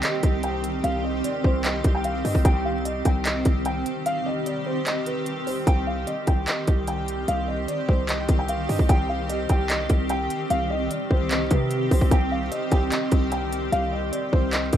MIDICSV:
0, 0, Header, 1, 5, 480
1, 0, Start_track
1, 0, Key_signature, -3, "minor"
1, 0, Tempo, 402685
1, 1000, Time_signature, 4, 2, 24, 8
1, 17607, End_track
2, 0, Start_track
2, 0, Title_t, "Grand piano"
2, 0, Program_c, 0, 0
2, 41, Note_on_c, 0, 75, 90
2, 491, Note_off_c, 0, 75, 0
2, 521, Note_on_c, 0, 79, 82
2, 971, Note_off_c, 0, 79, 0
2, 1000, Note_on_c, 0, 77, 100
2, 1223, Note_off_c, 0, 77, 0
2, 1241, Note_on_c, 0, 75, 74
2, 1464, Note_off_c, 0, 75, 0
2, 1480, Note_on_c, 0, 74, 88
2, 1704, Note_off_c, 0, 74, 0
2, 1720, Note_on_c, 0, 72, 94
2, 1944, Note_off_c, 0, 72, 0
2, 1959, Note_on_c, 0, 75, 84
2, 2298, Note_off_c, 0, 75, 0
2, 2321, Note_on_c, 0, 79, 88
2, 2432, Note_off_c, 0, 79, 0
2, 2439, Note_on_c, 0, 77, 86
2, 2663, Note_off_c, 0, 77, 0
2, 2679, Note_on_c, 0, 75, 87
2, 2903, Note_off_c, 0, 75, 0
2, 2920, Note_on_c, 0, 79, 98
2, 3144, Note_off_c, 0, 79, 0
2, 3161, Note_on_c, 0, 77, 79
2, 3384, Note_off_c, 0, 77, 0
2, 3401, Note_on_c, 0, 75, 86
2, 3624, Note_off_c, 0, 75, 0
2, 3641, Note_on_c, 0, 79, 87
2, 3864, Note_off_c, 0, 79, 0
2, 3879, Note_on_c, 0, 75, 93
2, 4330, Note_off_c, 0, 75, 0
2, 4359, Note_on_c, 0, 79, 95
2, 4811, Note_off_c, 0, 79, 0
2, 4840, Note_on_c, 0, 77, 111
2, 5063, Note_off_c, 0, 77, 0
2, 5081, Note_on_c, 0, 75, 93
2, 5304, Note_off_c, 0, 75, 0
2, 5319, Note_on_c, 0, 74, 74
2, 5543, Note_off_c, 0, 74, 0
2, 5560, Note_on_c, 0, 72, 84
2, 5783, Note_off_c, 0, 72, 0
2, 5799, Note_on_c, 0, 75, 94
2, 6023, Note_off_c, 0, 75, 0
2, 6039, Note_on_c, 0, 71, 82
2, 6491, Note_off_c, 0, 71, 0
2, 6519, Note_on_c, 0, 72, 85
2, 6743, Note_off_c, 0, 72, 0
2, 6758, Note_on_c, 0, 79, 97
2, 6983, Note_off_c, 0, 79, 0
2, 6998, Note_on_c, 0, 77, 76
2, 7223, Note_off_c, 0, 77, 0
2, 7237, Note_on_c, 0, 75, 85
2, 7462, Note_off_c, 0, 75, 0
2, 7478, Note_on_c, 0, 79, 79
2, 7702, Note_off_c, 0, 79, 0
2, 7718, Note_on_c, 0, 75, 87
2, 8170, Note_off_c, 0, 75, 0
2, 8198, Note_on_c, 0, 79, 83
2, 8650, Note_off_c, 0, 79, 0
2, 8680, Note_on_c, 0, 77, 100
2, 8903, Note_off_c, 0, 77, 0
2, 8918, Note_on_c, 0, 75, 76
2, 9142, Note_off_c, 0, 75, 0
2, 9158, Note_on_c, 0, 74, 88
2, 9382, Note_off_c, 0, 74, 0
2, 9398, Note_on_c, 0, 72, 91
2, 9623, Note_off_c, 0, 72, 0
2, 9638, Note_on_c, 0, 75, 88
2, 9977, Note_off_c, 0, 75, 0
2, 9999, Note_on_c, 0, 79, 86
2, 10111, Note_off_c, 0, 79, 0
2, 10119, Note_on_c, 0, 77, 88
2, 10343, Note_off_c, 0, 77, 0
2, 10358, Note_on_c, 0, 75, 91
2, 10582, Note_off_c, 0, 75, 0
2, 10598, Note_on_c, 0, 79, 100
2, 10823, Note_off_c, 0, 79, 0
2, 10838, Note_on_c, 0, 77, 80
2, 11062, Note_off_c, 0, 77, 0
2, 11078, Note_on_c, 0, 75, 88
2, 11303, Note_off_c, 0, 75, 0
2, 11319, Note_on_c, 0, 79, 89
2, 11543, Note_off_c, 0, 79, 0
2, 11558, Note_on_c, 0, 75, 95
2, 12010, Note_off_c, 0, 75, 0
2, 12038, Note_on_c, 0, 79, 97
2, 12490, Note_off_c, 0, 79, 0
2, 12519, Note_on_c, 0, 77, 106
2, 12743, Note_off_c, 0, 77, 0
2, 12759, Note_on_c, 0, 75, 91
2, 12983, Note_off_c, 0, 75, 0
2, 12999, Note_on_c, 0, 74, 71
2, 13223, Note_off_c, 0, 74, 0
2, 13239, Note_on_c, 0, 72, 82
2, 13463, Note_off_c, 0, 72, 0
2, 13481, Note_on_c, 0, 75, 93
2, 13704, Note_off_c, 0, 75, 0
2, 13719, Note_on_c, 0, 71, 81
2, 14171, Note_off_c, 0, 71, 0
2, 14200, Note_on_c, 0, 72, 86
2, 14423, Note_off_c, 0, 72, 0
2, 14440, Note_on_c, 0, 79, 96
2, 14663, Note_off_c, 0, 79, 0
2, 14681, Note_on_c, 0, 77, 76
2, 14904, Note_off_c, 0, 77, 0
2, 14920, Note_on_c, 0, 75, 87
2, 15143, Note_off_c, 0, 75, 0
2, 15160, Note_on_c, 0, 79, 77
2, 15383, Note_off_c, 0, 79, 0
2, 15399, Note_on_c, 0, 75, 87
2, 15850, Note_off_c, 0, 75, 0
2, 15877, Note_on_c, 0, 79, 82
2, 16329, Note_off_c, 0, 79, 0
2, 16358, Note_on_c, 0, 77, 102
2, 16582, Note_off_c, 0, 77, 0
2, 16598, Note_on_c, 0, 75, 74
2, 16823, Note_off_c, 0, 75, 0
2, 16836, Note_on_c, 0, 74, 85
2, 17062, Note_off_c, 0, 74, 0
2, 17079, Note_on_c, 0, 72, 93
2, 17303, Note_off_c, 0, 72, 0
2, 17316, Note_on_c, 0, 75, 90
2, 17607, Note_off_c, 0, 75, 0
2, 17607, End_track
3, 0, Start_track
3, 0, Title_t, "Ambient pad"
3, 0, Program_c, 1, 92
3, 0, Note_on_c, 1, 51, 84
3, 0, Note_on_c, 1, 60, 74
3, 0, Note_on_c, 1, 67, 88
3, 2874, Note_off_c, 1, 51, 0
3, 2874, Note_off_c, 1, 67, 0
3, 2921, Note_on_c, 1, 51, 83
3, 2921, Note_on_c, 1, 67, 91
3, 6713, Note_off_c, 1, 60, 0
3, 6722, Note_off_c, 1, 51, 0
3, 6722, Note_off_c, 1, 67, 0
3, 6761, Note_on_c, 1, 51, 82
3, 6761, Note_on_c, 1, 60, 75
3, 6761, Note_on_c, 1, 67, 87
3, 17607, Note_off_c, 1, 51, 0
3, 17607, Note_off_c, 1, 60, 0
3, 17607, Note_off_c, 1, 67, 0
3, 17607, End_track
4, 0, Start_track
4, 0, Title_t, "808-style bass"
4, 0, Program_c, 2, 38
4, 278, Note_on_c, 2, 36, 107
4, 970, Note_off_c, 2, 36, 0
4, 998, Note_on_c, 2, 36, 111
4, 1459, Note_off_c, 2, 36, 0
4, 1721, Note_on_c, 2, 36, 107
4, 2181, Note_off_c, 2, 36, 0
4, 2199, Note_on_c, 2, 36, 100
4, 2660, Note_off_c, 2, 36, 0
4, 2680, Note_on_c, 2, 43, 105
4, 2795, Note_off_c, 2, 43, 0
4, 2801, Note_on_c, 2, 36, 105
4, 2913, Note_off_c, 2, 36, 0
4, 2920, Note_on_c, 2, 36, 115
4, 3611, Note_off_c, 2, 36, 0
4, 3640, Note_on_c, 2, 36, 105
4, 4100, Note_off_c, 2, 36, 0
4, 4119, Note_on_c, 2, 36, 107
4, 4580, Note_off_c, 2, 36, 0
4, 6759, Note_on_c, 2, 36, 111
4, 7220, Note_off_c, 2, 36, 0
4, 7479, Note_on_c, 2, 36, 109
4, 7710, Note_off_c, 2, 36, 0
4, 7959, Note_on_c, 2, 36, 100
4, 8650, Note_off_c, 2, 36, 0
4, 8679, Note_on_c, 2, 36, 114
4, 9140, Note_off_c, 2, 36, 0
4, 9401, Note_on_c, 2, 36, 105
4, 9861, Note_off_c, 2, 36, 0
4, 9879, Note_on_c, 2, 36, 106
4, 10340, Note_off_c, 2, 36, 0
4, 10360, Note_on_c, 2, 43, 107
4, 10475, Note_off_c, 2, 43, 0
4, 10480, Note_on_c, 2, 36, 104
4, 10592, Note_off_c, 2, 36, 0
4, 10600, Note_on_c, 2, 36, 114
4, 11291, Note_off_c, 2, 36, 0
4, 11320, Note_on_c, 2, 36, 109
4, 11781, Note_off_c, 2, 36, 0
4, 11798, Note_on_c, 2, 36, 104
4, 12259, Note_off_c, 2, 36, 0
4, 12519, Note_on_c, 2, 36, 115
4, 12980, Note_off_c, 2, 36, 0
4, 13239, Note_on_c, 2, 36, 106
4, 13700, Note_off_c, 2, 36, 0
4, 13719, Note_on_c, 2, 48, 107
4, 14180, Note_off_c, 2, 48, 0
4, 14200, Note_on_c, 2, 36, 103
4, 14315, Note_off_c, 2, 36, 0
4, 14320, Note_on_c, 2, 36, 104
4, 14431, Note_off_c, 2, 36, 0
4, 14439, Note_on_c, 2, 36, 114
4, 14900, Note_off_c, 2, 36, 0
4, 15160, Note_on_c, 2, 36, 109
4, 15390, Note_off_c, 2, 36, 0
4, 15639, Note_on_c, 2, 36, 107
4, 16330, Note_off_c, 2, 36, 0
4, 16358, Note_on_c, 2, 36, 113
4, 16819, Note_off_c, 2, 36, 0
4, 17080, Note_on_c, 2, 36, 111
4, 17540, Note_off_c, 2, 36, 0
4, 17558, Note_on_c, 2, 36, 103
4, 17607, Note_off_c, 2, 36, 0
4, 17607, End_track
5, 0, Start_track
5, 0, Title_t, "Drums"
5, 38, Note_on_c, 9, 42, 82
5, 39, Note_on_c, 9, 39, 125
5, 157, Note_off_c, 9, 42, 0
5, 158, Note_off_c, 9, 39, 0
5, 275, Note_on_c, 9, 42, 78
5, 278, Note_on_c, 9, 36, 100
5, 394, Note_off_c, 9, 42, 0
5, 398, Note_off_c, 9, 36, 0
5, 514, Note_on_c, 9, 42, 82
5, 634, Note_off_c, 9, 42, 0
5, 761, Note_on_c, 9, 42, 86
5, 881, Note_off_c, 9, 42, 0
5, 1001, Note_on_c, 9, 42, 75
5, 1120, Note_off_c, 9, 42, 0
5, 1481, Note_on_c, 9, 42, 90
5, 1600, Note_off_c, 9, 42, 0
5, 1720, Note_on_c, 9, 36, 94
5, 1839, Note_off_c, 9, 36, 0
5, 1959, Note_on_c, 9, 42, 79
5, 1960, Note_on_c, 9, 39, 125
5, 2078, Note_off_c, 9, 42, 0
5, 2080, Note_off_c, 9, 39, 0
5, 2197, Note_on_c, 9, 42, 79
5, 2199, Note_on_c, 9, 36, 101
5, 2316, Note_off_c, 9, 42, 0
5, 2319, Note_off_c, 9, 36, 0
5, 2435, Note_on_c, 9, 42, 80
5, 2554, Note_off_c, 9, 42, 0
5, 2682, Note_on_c, 9, 46, 85
5, 2801, Note_off_c, 9, 46, 0
5, 2801, Note_on_c, 9, 36, 91
5, 2920, Note_off_c, 9, 36, 0
5, 2920, Note_on_c, 9, 36, 126
5, 2920, Note_on_c, 9, 42, 78
5, 3039, Note_off_c, 9, 36, 0
5, 3039, Note_off_c, 9, 42, 0
5, 3401, Note_on_c, 9, 42, 91
5, 3520, Note_off_c, 9, 42, 0
5, 3637, Note_on_c, 9, 42, 77
5, 3640, Note_on_c, 9, 36, 96
5, 3756, Note_off_c, 9, 42, 0
5, 3759, Note_off_c, 9, 36, 0
5, 3878, Note_on_c, 9, 42, 80
5, 3879, Note_on_c, 9, 39, 124
5, 3997, Note_off_c, 9, 42, 0
5, 3998, Note_off_c, 9, 39, 0
5, 4114, Note_on_c, 9, 42, 80
5, 4119, Note_on_c, 9, 36, 105
5, 4234, Note_off_c, 9, 42, 0
5, 4238, Note_off_c, 9, 36, 0
5, 4352, Note_on_c, 9, 42, 81
5, 4472, Note_off_c, 9, 42, 0
5, 4601, Note_on_c, 9, 42, 86
5, 4721, Note_off_c, 9, 42, 0
5, 4839, Note_on_c, 9, 42, 74
5, 4958, Note_off_c, 9, 42, 0
5, 5319, Note_on_c, 9, 42, 88
5, 5438, Note_off_c, 9, 42, 0
5, 5798, Note_on_c, 9, 39, 121
5, 5798, Note_on_c, 9, 42, 82
5, 5917, Note_off_c, 9, 42, 0
5, 5918, Note_off_c, 9, 39, 0
5, 6035, Note_on_c, 9, 42, 79
5, 6155, Note_off_c, 9, 42, 0
5, 6273, Note_on_c, 9, 42, 80
5, 6392, Note_off_c, 9, 42, 0
5, 6521, Note_on_c, 9, 46, 85
5, 6640, Note_off_c, 9, 46, 0
5, 6759, Note_on_c, 9, 36, 127
5, 6759, Note_on_c, 9, 42, 78
5, 6878, Note_off_c, 9, 36, 0
5, 6879, Note_off_c, 9, 42, 0
5, 7238, Note_on_c, 9, 42, 88
5, 7358, Note_off_c, 9, 42, 0
5, 7475, Note_on_c, 9, 42, 77
5, 7479, Note_on_c, 9, 36, 97
5, 7595, Note_off_c, 9, 42, 0
5, 7598, Note_off_c, 9, 36, 0
5, 7718, Note_on_c, 9, 42, 80
5, 7719, Note_on_c, 9, 39, 123
5, 7837, Note_off_c, 9, 42, 0
5, 7838, Note_off_c, 9, 39, 0
5, 7956, Note_on_c, 9, 42, 80
5, 7959, Note_on_c, 9, 36, 105
5, 8075, Note_off_c, 9, 42, 0
5, 8078, Note_off_c, 9, 36, 0
5, 8194, Note_on_c, 9, 42, 79
5, 8313, Note_off_c, 9, 42, 0
5, 8441, Note_on_c, 9, 42, 85
5, 8560, Note_off_c, 9, 42, 0
5, 8679, Note_on_c, 9, 42, 76
5, 8798, Note_off_c, 9, 42, 0
5, 9160, Note_on_c, 9, 42, 90
5, 9279, Note_off_c, 9, 42, 0
5, 9400, Note_on_c, 9, 36, 97
5, 9520, Note_off_c, 9, 36, 0
5, 9640, Note_on_c, 9, 42, 80
5, 9641, Note_on_c, 9, 39, 119
5, 9759, Note_off_c, 9, 42, 0
5, 9760, Note_off_c, 9, 39, 0
5, 9876, Note_on_c, 9, 42, 80
5, 9879, Note_on_c, 9, 36, 101
5, 9995, Note_off_c, 9, 42, 0
5, 9999, Note_off_c, 9, 36, 0
5, 10114, Note_on_c, 9, 42, 77
5, 10233, Note_off_c, 9, 42, 0
5, 10361, Note_on_c, 9, 46, 88
5, 10480, Note_off_c, 9, 46, 0
5, 10480, Note_on_c, 9, 36, 93
5, 10599, Note_off_c, 9, 36, 0
5, 10599, Note_on_c, 9, 42, 77
5, 10600, Note_on_c, 9, 36, 125
5, 10718, Note_off_c, 9, 42, 0
5, 10719, Note_off_c, 9, 36, 0
5, 11080, Note_on_c, 9, 42, 90
5, 11199, Note_off_c, 9, 42, 0
5, 11316, Note_on_c, 9, 42, 77
5, 11320, Note_on_c, 9, 36, 98
5, 11435, Note_off_c, 9, 42, 0
5, 11439, Note_off_c, 9, 36, 0
5, 11558, Note_on_c, 9, 42, 81
5, 11559, Note_on_c, 9, 39, 120
5, 11677, Note_off_c, 9, 42, 0
5, 11678, Note_off_c, 9, 39, 0
5, 11795, Note_on_c, 9, 42, 80
5, 11799, Note_on_c, 9, 36, 103
5, 11914, Note_off_c, 9, 42, 0
5, 11918, Note_off_c, 9, 36, 0
5, 12032, Note_on_c, 9, 42, 78
5, 12151, Note_off_c, 9, 42, 0
5, 12281, Note_on_c, 9, 42, 88
5, 12400, Note_off_c, 9, 42, 0
5, 12519, Note_on_c, 9, 42, 75
5, 12638, Note_off_c, 9, 42, 0
5, 13001, Note_on_c, 9, 42, 92
5, 13120, Note_off_c, 9, 42, 0
5, 13240, Note_on_c, 9, 36, 92
5, 13359, Note_off_c, 9, 36, 0
5, 13478, Note_on_c, 9, 42, 82
5, 13479, Note_on_c, 9, 39, 126
5, 13598, Note_off_c, 9, 42, 0
5, 13599, Note_off_c, 9, 39, 0
5, 13715, Note_on_c, 9, 42, 79
5, 13719, Note_on_c, 9, 36, 103
5, 13835, Note_off_c, 9, 42, 0
5, 13838, Note_off_c, 9, 36, 0
5, 13954, Note_on_c, 9, 42, 81
5, 14073, Note_off_c, 9, 42, 0
5, 14200, Note_on_c, 9, 36, 102
5, 14201, Note_on_c, 9, 46, 85
5, 14319, Note_off_c, 9, 36, 0
5, 14320, Note_on_c, 9, 36, 93
5, 14321, Note_off_c, 9, 46, 0
5, 14439, Note_off_c, 9, 36, 0
5, 14439, Note_on_c, 9, 36, 124
5, 14440, Note_on_c, 9, 42, 78
5, 14558, Note_off_c, 9, 36, 0
5, 14559, Note_off_c, 9, 42, 0
5, 14920, Note_on_c, 9, 42, 89
5, 15039, Note_off_c, 9, 42, 0
5, 15157, Note_on_c, 9, 42, 79
5, 15160, Note_on_c, 9, 36, 96
5, 15276, Note_off_c, 9, 42, 0
5, 15279, Note_off_c, 9, 36, 0
5, 15398, Note_on_c, 9, 42, 83
5, 15400, Note_on_c, 9, 39, 124
5, 15518, Note_off_c, 9, 42, 0
5, 15519, Note_off_c, 9, 39, 0
5, 15635, Note_on_c, 9, 42, 80
5, 15639, Note_on_c, 9, 36, 107
5, 15754, Note_off_c, 9, 42, 0
5, 15758, Note_off_c, 9, 36, 0
5, 15874, Note_on_c, 9, 42, 80
5, 15993, Note_off_c, 9, 42, 0
5, 16122, Note_on_c, 9, 42, 82
5, 16241, Note_off_c, 9, 42, 0
5, 16360, Note_on_c, 9, 42, 74
5, 16479, Note_off_c, 9, 42, 0
5, 16840, Note_on_c, 9, 42, 88
5, 16959, Note_off_c, 9, 42, 0
5, 17080, Note_on_c, 9, 36, 96
5, 17199, Note_off_c, 9, 36, 0
5, 17317, Note_on_c, 9, 42, 82
5, 17318, Note_on_c, 9, 39, 126
5, 17436, Note_off_c, 9, 42, 0
5, 17437, Note_off_c, 9, 39, 0
5, 17554, Note_on_c, 9, 42, 77
5, 17559, Note_on_c, 9, 36, 107
5, 17607, Note_off_c, 9, 36, 0
5, 17607, Note_off_c, 9, 42, 0
5, 17607, End_track
0, 0, End_of_file